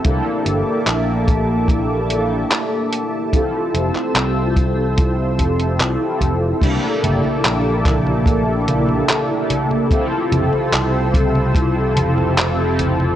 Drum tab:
CC |----------------|----------------|x---------------|----------------|
HH |x-x-x-x-x-x-x-x-|x-x-x-x-x-xxx-x-|x-x-x-x-x-x-x-x-|x-x-x-x-x-x-x-x-|
CP |----x-------x---|---xx-------x---|----x-x-----x---|----x-------x---|
CG |----------------|----------------|o-ooo-ooo-ooo-oo|--ooo-ooo-ooo-oo|
BD |o-----o-o-------|o-----o-o-o---o-|o-----o-o-------|o-----o-o-------|